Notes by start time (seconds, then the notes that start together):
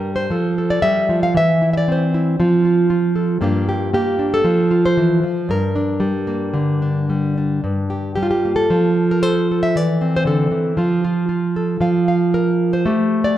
Already playing: G2 G3 D4 A#4
0.16 C5
0.30 F3 A4
0.58 A4
0.70 D5
0.82 G3 E5
1.09 F3
1.23 F5
1.34 E3 E5
1.62 E4
1.73 E5
1.77 D5
1.88 C4 C5
2.14 E4
2.40 F3 F4
2.65 F4
2.90 F4
3.16 A4
3.41 G2 A#3 D4 F4 G4
3.69 G4
3.93 A#3 G4
4.19 D4
4.34 A4
4.44 F3
4.71 F4
4.86 C5
4.97 E3
5.23 F3
5.49 G2 A#4
5.76 D4
6.00 G3
6.27 A#3
6.54 D3
6.82 D4
7.10 G3
7.38 D4
7.64 G2
7.90 G4
8.15 G3 G4
8.23 F4
8.31 G4
8.45 A#3
8.56 A4
8.70 F3
9.11 A#4
9.23 A4 C5
9.51 A4
9.63 E5
9.76 E3 D5
10.01 C4
10.16 C5
10.25 D3 A4
10.51 E3
10.77 F3 F4
11.04 F4
11.29 F4
11.56 A4
11.81 F3 F5
12.08 F5
12.34 A#4
12.73 C5
12.86 A3 G4
13.24 D5